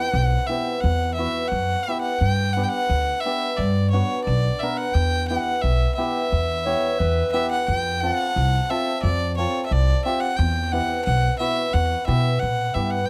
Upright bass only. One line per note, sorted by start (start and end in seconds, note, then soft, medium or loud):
0.14 0.35 B1 loud
0.84 1.25 E2 loud
1.52 1.73 F#2 medium
2.21 2.63 G2 medium
2.89 3.10 D2 medium
3.58 4.00 G2 loud
4.27 4.48 B1 loud
4.95 5.36 E2 loud
5.64 5.84 B1 medium
6.32 6.73 E2 medium
7.00 7.21 E2 medium
7.68 8.09 F2 medium
8.36 8.57 C2 medium
9.04 9.44 F2 loud
9.71 9.92 C2 medium
10.39 10.79 E2 loud
11.07 11.27 B1 medium
11.74 11.94 E2 loud
12.08 12.38 B2 medium
12.43 12.72 A#2 medium
12.75 13.05 G2 medium